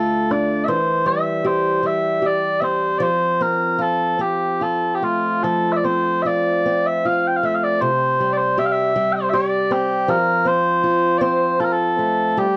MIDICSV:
0, 0, Header, 1, 3, 480
1, 0, Start_track
1, 0, Tempo, 755668
1, 433, Time_signature, 3, 2, 24, 8
1, 919, Tempo, 782269
1, 2359, Tempo, 813008
1, 4279, Tempo, 757576
1, 6679, Tempo, 775194
1, 7752, End_track
2, 0, Start_track
2, 0, Title_t, "Bagpipes"
2, 0, Program_c, 0, 109
2, 0, Note_on_c, 0, 69, 60
2, 199, Note_off_c, 0, 69, 0
2, 199, Note_on_c, 0, 74, 56
2, 410, Note_off_c, 0, 74, 0
2, 410, Note_on_c, 0, 76, 65
2, 435, Note_off_c, 0, 76, 0
2, 435, Note_on_c, 0, 72, 65
2, 679, Note_off_c, 0, 72, 0
2, 679, Note_on_c, 0, 76, 68
2, 931, Note_off_c, 0, 76, 0
2, 931, Note_on_c, 0, 72, 66
2, 1176, Note_off_c, 0, 72, 0
2, 1176, Note_on_c, 0, 76, 65
2, 1420, Note_off_c, 0, 76, 0
2, 1420, Note_on_c, 0, 74, 65
2, 1629, Note_off_c, 0, 74, 0
2, 1629, Note_on_c, 0, 76, 61
2, 1651, Note_off_c, 0, 76, 0
2, 1651, Note_on_c, 0, 72, 61
2, 1863, Note_off_c, 0, 72, 0
2, 1863, Note_on_c, 0, 74, 70
2, 1890, Note_off_c, 0, 74, 0
2, 1890, Note_on_c, 0, 72, 70
2, 2130, Note_off_c, 0, 72, 0
2, 2130, Note_on_c, 0, 70, 59
2, 2371, Note_off_c, 0, 70, 0
2, 2371, Note_on_c, 0, 69, 62
2, 2605, Note_off_c, 0, 69, 0
2, 2605, Note_on_c, 0, 67, 54
2, 2851, Note_off_c, 0, 67, 0
2, 2851, Note_on_c, 0, 69, 51
2, 3041, Note_off_c, 0, 69, 0
2, 3041, Note_on_c, 0, 67, 35
2, 3094, Note_off_c, 0, 67, 0
2, 3094, Note_on_c, 0, 65, 47
2, 3327, Note_off_c, 0, 65, 0
2, 3327, Note_on_c, 0, 69, 61
2, 3498, Note_off_c, 0, 69, 0
2, 3498, Note_on_c, 0, 76, 42
2, 3524, Note_off_c, 0, 76, 0
2, 3524, Note_on_c, 0, 74, 42
2, 3572, Note_off_c, 0, 74, 0
2, 3572, Note_on_c, 0, 72, 59
2, 3794, Note_off_c, 0, 72, 0
2, 3794, Note_on_c, 0, 76, 60
2, 3820, Note_off_c, 0, 76, 0
2, 3820, Note_on_c, 0, 74, 60
2, 4172, Note_off_c, 0, 74, 0
2, 4172, Note_on_c, 0, 76, 65
2, 4287, Note_off_c, 0, 76, 0
2, 4287, Note_on_c, 0, 77, 64
2, 4424, Note_off_c, 0, 77, 0
2, 4424, Note_on_c, 0, 79, 56
2, 4481, Note_off_c, 0, 79, 0
2, 4481, Note_on_c, 0, 77, 56
2, 4535, Note_off_c, 0, 77, 0
2, 4535, Note_on_c, 0, 76, 58
2, 4596, Note_off_c, 0, 76, 0
2, 4596, Note_on_c, 0, 77, 58
2, 4653, Note_off_c, 0, 77, 0
2, 4653, Note_on_c, 0, 74, 63
2, 4765, Note_off_c, 0, 74, 0
2, 4765, Note_on_c, 0, 72, 71
2, 5094, Note_off_c, 0, 72, 0
2, 5094, Note_on_c, 0, 74, 69
2, 5121, Note_off_c, 0, 74, 0
2, 5121, Note_on_c, 0, 72, 69
2, 5256, Note_off_c, 0, 72, 0
2, 5256, Note_on_c, 0, 76, 72
2, 5297, Note_off_c, 0, 76, 0
2, 5297, Note_on_c, 0, 77, 60
2, 5338, Note_off_c, 0, 77, 0
2, 5338, Note_on_c, 0, 76, 71
2, 5596, Note_off_c, 0, 76, 0
2, 5596, Note_on_c, 0, 79, 68
2, 5617, Note_off_c, 0, 79, 0
2, 5617, Note_on_c, 0, 72, 68
2, 5704, Note_off_c, 0, 72, 0
2, 5704, Note_on_c, 0, 76, 68
2, 5731, Note_off_c, 0, 76, 0
2, 5731, Note_on_c, 0, 74, 68
2, 5975, Note_off_c, 0, 74, 0
2, 5975, Note_on_c, 0, 67, 66
2, 6211, Note_off_c, 0, 67, 0
2, 6211, Note_on_c, 0, 70, 77
2, 6450, Note_off_c, 0, 70, 0
2, 6450, Note_on_c, 0, 72, 76
2, 6894, Note_off_c, 0, 72, 0
2, 6895, Note_on_c, 0, 74, 66
2, 6917, Note_off_c, 0, 74, 0
2, 6917, Note_on_c, 0, 72, 66
2, 7153, Note_off_c, 0, 72, 0
2, 7153, Note_on_c, 0, 69, 61
2, 7178, Note_off_c, 0, 69, 0
2, 7178, Note_on_c, 0, 70, 52
2, 7228, Note_off_c, 0, 70, 0
2, 7228, Note_on_c, 0, 69, 59
2, 7638, Note_off_c, 0, 69, 0
2, 7638, Note_on_c, 0, 67, 59
2, 7752, Note_off_c, 0, 67, 0
2, 7752, End_track
3, 0, Start_track
3, 0, Title_t, "Steel-string acoustic guitar"
3, 0, Program_c, 1, 25
3, 0, Note_on_c, 1, 38, 55
3, 0, Note_on_c, 1, 57, 43
3, 0, Note_on_c, 1, 62, 38
3, 0, Note_on_c, 1, 65, 44
3, 192, Note_off_c, 1, 62, 0
3, 194, Note_on_c, 1, 62, 45
3, 433, Note_off_c, 1, 38, 0
3, 433, Note_on_c, 1, 52, 56
3, 479, Note_off_c, 1, 57, 0
3, 479, Note_off_c, 1, 65, 0
3, 481, Note_off_c, 1, 62, 0
3, 671, Note_on_c, 1, 55, 42
3, 918, Note_on_c, 1, 67, 51
3, 1146, Note_off_c, 1, 55, 0
3, 1153, Note_on_c, 1, 55, 44
3, 1386, Note_off_c, 1, 67, 0
3, 1393, Note_on_c, 1, 67, 46
3, 1636, Note_on_c, 1, 60, 45
3, 1870, Note_off_c, 1, 52, 0
3, 1872, Note_on_c, 1, 53, 57
3, 1923, Note_off_c, 1, 55, 0
3, 1924, Note_off_c, 1, 67, 0
3, 2121, Note_off_c, 1, 60, 0
3, 2121, Note_on_c, 1, 60, 42
3, 2354, Note_on_c, 1, 65, 47
3, 2591, Note_off_c, 1, 60, 0
3, 2593, Note_on_c, 1, 60, 38
3, 2834, Note_off_c, 1, 65, 0
3, 2841, Note_on_c, 1, 65, 37
3, 3086, Note_on_c, 1, 57, 35
3, 3323, Note_off_c, 1, 53, 0
3, 3331, Note_on_c, 1, 53, 48
3, 3567, Note_off_c, 1, 60, 0
3, 3569, Note_on_c, 1, 60, 36
3, 3804, Note_off_c, 1, 65, 0
3, 3811, Note_on_c, 1, 65, 42
3, 4047, Note_off_c, 1, 60, 0
3, 4049, Note_on_c, 1, 60, 39
3, 4276, Note_off_c, 1, 65, 0
3, 4284, Note_on_c, 1, 65, 40
3, 4516, Note_off_c, 1, 57, 0
3, 4523, Note_on_c, 1, 57, 41
3, 4767, Note_on_c, 1, 48, 55
3, 4769, Note_off_c, 1, 53, 0
3, 4815, Note_off_c, 1, 57, 0
3, 4818, Note_off_c, 1, 65, 0
3, 5010, Note_off_c, 1, 60, 0
3, 5013, Note_on_c, 1, 55, 41
3, 5249, Note_on_c, 1, 67, 53
3, 5482, Note_off_c, 1, 55, 0
3, 5490, Note_on_c, 1, 55, 44
3, 5721, Note_off_c, 1, 67, 0
3, 5728, Note_on_c, 1, 67, 47
3, 5965, Note_on_c, 1, 60, 47
3, 6203, Note_off_c, 1, 48, 0
3, 6203, Note_on_c, 1, 53, 64
3, 6252, Note_off_c, 1, 55, 0
3, 6252, Note_off_c, 1, 67, 0
3, 6437, Note_off_c, 1, 60, 0
3, 6437, Note_on_c, 1, 60, 46
3, 6680, Note_on_c, 1, 65, 53
3, 6904, Note_off_c, 1, 60, 0
3, 6912, Note_on_c, 1, 60, 49
3, 7146, Note_off_c, 1, 65, 0
3, 7154, Note_on_c, 1, 65, 47
3, 7393, Note_on_c, 1, 57, 43
3, 7630, Note_off_c, 1, 53, 0
3, 7632, Note_on_c, 1, 55, 54
3, 7685, Note_off_c, 1, 60, 0
3, 7686, Note_off_c, 1, 57, 0
3, 7687, Note_off_c, 1, 65, 0
3, 7752, Note_off_c, 1, 55, 0
3, 7752, End_track
0, 0, End_of_file